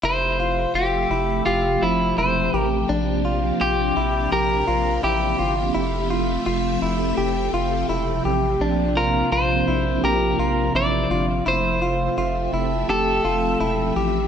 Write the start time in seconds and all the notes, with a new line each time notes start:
0.02 F1 C3 F3 A3 E4 G4 C5 E5
0.40 F4
0.74 F1 F4 G4
1.10 F1 E4
1.46 F1 F4 G4
1.82 F1 F3 E4
2.18 E1 E4 C5
2.54 A1 G4
2.89 A#1 A#3 D4
3.25 F4
3.61 A#1 F4 G4
3.97 A#1 E4
4.32 A#1 G4 A#4
4.68 A#1 F4
5.03 A1 E4 G4
5.39 G1 F4
5.75 F1 A3 E4 E5
6.10 F4
6.46 F1 F4
6.82 F1 E4
7.18 F1 G4
7.53 F1 F4
7.89 E1 E4
8.25 A1 G4
8.60 A#1 F3 A#3 D4
8.97 F4 A#4
9.32 A#1 F4 C5
9.68 A#1 E4
10.03 A#1 G4 A#4
10.39 A#1 F4
10.74 A1 E4 D5
11.10 G1 F4
11.46 F1 F3 A3 E4 C5 E5
11.82 F4
12.18 F1 F4 E5
12.41 G5
12.53 F1 E4
12.65 A5
12.89 F1 G4 A4
13.24 F1 F4
13.60 E1 E4 G5
13.96 A1 G4